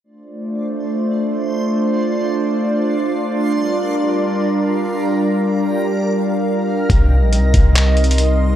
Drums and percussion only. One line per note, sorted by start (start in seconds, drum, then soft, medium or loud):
6.90 kick loud
6.90 closed hi-hat medium
7.33 closed hi-hat medium
7.54 kick medium
7.54 closed hi-hat medium
7.76 clap loud
7.76 closed hi-hat medium
7.97 closed hi-hat soft
8.04 closed hi-hat soft
8.11 closed hi-hat medium
8.18 closed hi-hat medium